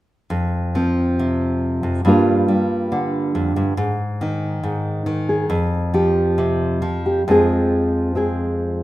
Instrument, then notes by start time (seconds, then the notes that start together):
nylon-string guitar
0.30 F2
0.75 F3 C4
1.19 C3
1.83 F2
2.05 G2 G3 A#3 D4 F4
2.48 G3 D4
2.92 D3
3.35 F2
3.56 G2
3.77 G#2
4.21 D#3 D#4
4.63 G#2
5.06 D#3
5.29 G#4
5.50 F2
5.94 F3 G4
6.38 C3
6.82 F3
7.06 G4
7.28 F2 F3 G#3 C4 G#4
8.15 G#3 C4 G#4